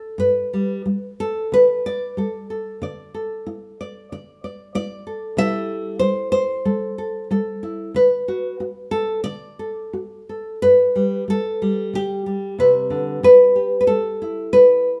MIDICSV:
0, 0, Header, 1, 2, 480
1, 0, Start_track
1, 0, Key_signature, 1, "major"
1, 0, Tempo, 658617
1, 134, Time_signature, 4, 2, 24, 8
1, 2052, Tempo, 642398
1, 6372, Tempo, 670391
1, 8292, Tempo, 648649
1, 11046, End_track
2, 0, Start_track
2, 0, Title_t, "Nylon-string guitar"
2, 0, Program_c, 0, 24
2, 0, Note_on_c, 0, 66, 58
2, 0, Note_on_c, 0, 69, 43
2, 87, Note_off_c, 0, 66, 0
2, 131, Note_on_c, 0, 43, 73
2, 140, Note_off_c, 0, 69, 0
2, 143, Note_on_c, 0, 71, 84
2, 390, Note_on_c, 0, 55, 48
2, 571, Note_off_c, 0, 43, 0
2, 615, Note_off_c, 0, 55, 0
2, 624, Note_on_c, 0, 55, 60
2, 875, Note_on_c, 0, 69, 79
2, 1057, Note_off_c, 0, 55, 0
2, 1108, Note_off_c, 0, 71, 0
2, 1108, Note_on_c, 0, 50, 65
2, 1119, Note_on_c, 0, 71, 91
2, 1347, Note_off_c, 0, 69, 0
2, 1356, Note_on_c, 0, 74, 86
2, 1533, Note_off_c, 0, 50, 0
2, 1582, Note_on_c, 0, 55, 59
2, 1586, Note_off_c, 0, 71, 0
2, 1590, Note_on_c, 0, 69, 48
2, 1820, Note_off_c, 0, 69, 0
2, 1823, Note_on_c, 0, 69, 44
2, 2007, Note_off_c, 0, 55, 0
2, 2052, Note_on_c, 0, 50, 73
2, 2053, Note_off_c, 0, 74, 0
2, 2062, Note_on_c, 0, 74, 53
2, 2295, Note_off_c, 0, 69, 0
2, 2298, Note_on_c, 0, 69, 51
2, 2486, Note_off_c, 0, 50, 0
2, 2537, Note_on_c, 0, 64, 62
2, 2778, Note_off_c, 0, 74, 0
2, 2792, Note_on_c, 0, 74, 52
2, 2967, Note_off_c, 0, 64, 0
2, 3020, Note_off_c, 0, 74, 0
2, 3028, Note_on_c, 0, 50, 58
2, 3030, Note_on_c, 0, 74, 50
2, 3258, Note_off_c, 0, 74, 0
2, 3267, Note_on_c, 0, 74, 47
2, 3452, Note_off_c, 0, 50, 0
2, 3488, Note_off_c, 0, 74, 0
2, 3496, Note_on_c, 0, 64, 73
2, 3500, Note_on_c, 0, 74, 102
2, 3731, Note_off_c, 0, 69, 0
2, 3734, Note_on_c, 0, 69, 44
2, 3923, Note_off_c, 0, 64, 0
2, 3959, Note_on_c, 0, 48, 82
2, 3967, Note_on_c, 0, 55, 50
2, 3968, Note_off_c, 0, 74, 0
2, 3971, Note_on_c, 0, 64, 48
2, 3971, Note_on_c, 0, 76, 126
2, 3973, Note_off_c, 0, 69, 0
2, 3976, Note_on_c, 0, 69, 56
2, 4390, Note_off_c, 0, 48, 0
2, 4424, Note_off_c, 0, 76, 0
2, 4427, Note_on_c, 0, 72, 92
2, 4429, Note_off_c, 0, 55, 0
2, 4438, Note_on_c, 0, 55, 66
2, 4661, Note_off_c, 0, 72, 0
2, 4670, Note_on_c, 0, 72, 86
2, 4870, Note_off_c, 0, 55, 0
2, 4917, Note_off_c, 0, 69, 0
2, 4919, Note_on_c, 0, 55, 63
2, 4920, Note_on_c, 0, 69, 49
2, 5163, Note_off_c, 0, 69, 0
2, 5166, Note_on_c, 0, 69, 50
2, 5354, Note_off_c, 0, 55, 0
2, 5407, Note_on_c, 0, 55, 65
2, 5409, Note_off_c, 0, 69, 0
2, 5412, Note_on_c, 0, 69, 54
2, 5639, Note_off_c, 0, 64, 0
2, 5648, Note_on_c, 0, 64, 43
2, 5839, Note_off_c, 0, 55, 0
2, 5859, Note_off_c, 0, 64, 0
2, 5880, Note_off_c, 0, 72, 0
2, 5884, Note_on_c, 0, 50, 67
2, 5892, Note_off_c, 0, 69, 0
2, 5895, Note_on_c, 0, 71, 95
2, 6136, Note_on_c, 0, 66, 52
2, 6323, Note_off_c, 0, 50, 0
2, 6366, Note_off_c, 0, 66, 0
2, 6375, Note_on_c, 0, 66, 62
2, 6598, Note_on_c, 0, 69, 88
2, 6794, Note_off_c, 0, 66, 0
2, 6827, Note_off_c, 0, 69, 0
2, 6830, Note_on_c, 0, 74, 101
2, 6842, Note_on_c, 0, 50, 59
2, 7082, Note_off_c, 0, 71, 0
2, 7085, Note_on_c, 0, 69, 44
2, 7275, Note_off_c, 0, 50, 0
2, 7329, Note_on_c, 0, 66, 57
2, 7575, Note_off_c, 0, 69, 0
2, 7587, Note_on_c, 0, 69, 39
2, 7769, Note_off_c, 0, 66, 0
2, 7793, Note_off_c, 0, 69, 0
2, 7809, Note_off_c, 0, 74, 0
2, 7822, Note_on_c, 0, 71, 108
2, 7827, Note_on_c, 0, 43, 72
2, 8060, Note_on_c, 0, 55, 49
2, 8250, Note_off_c, 0, 43, 0
2, 8289, Note_off_c, 0, 55, 0
2, 8292, Note_on_c, 0, 55, 54
2, 8308, Note_on_c, 0, 69, 85
2, 8534, Note_off_c, 0, 55, 0
2, 8543, Note_on_c, 0, 55, 44
2, 8778, Note_on_c, 0, 50, 54
2, 8781, Note_off_c, 0, 71, 0
2, 8791, Note_on_c, 0, 67, 98
2, 9017, Note_off_c, 0, 55, 0
2, 9020, Note_on_c, 0, 55, 41
2, 9209, Note_off_c, 0, 50, 0
2, 9259, Note_on_c, 0, 48, 61
2, 9264, Note_off_c, 0, 67, 0
2, 9265, Note_off_c, 0, 69, 0
2, 9268, Note_on_c, 0, 71, 89
2, 9493, Note_on_c, 0, 50, 57
2, 9497, Note_off_c, 0, 48, 0
2, 9734, Note_off_c, 0, 50, 0
2, 9737, Note_off_c, 0, 71, 0
2, 9738, Note_on_c, 0, 52, 78
2, 9746, Note_on_c, 0, 71, 104
2, 9977, Note_on_c, 0, 67, 45
2, 10153, Note_off_c, 0, 71, 0
2, 10162, Note_on_c, 0, 71, 65
2, 10167, Note_off_c, 0, 52, 0
2, 10206, Note_off_c, 0, 55, 0
2, 10208, Note_off_c, 0, 71, 0
2, 10209, Note_on_c, 0, 55, 60
2, 10211, Note_on_c, 0, 69, 82
2, 10466, Note_on_c, 0, 64, 46
2, 10642, Note_off_c, 0, 55, 0
2, 10690, Note_off_c, 0, 69, 0
2, 10694, Note_on_c, 0, 47, 63
2, 10697, Note_on_c, 0, 71, 99
2, 11046, Note_off_c, 0, 47, 0
2, 11046, Note_off_c, 0, 64, 0
2, 11046, Note_off_c, 0, 67, 0
2, 11046, Note_off_c, 0, 71, 0
2, 11046, End_track
0, 0, End_of_file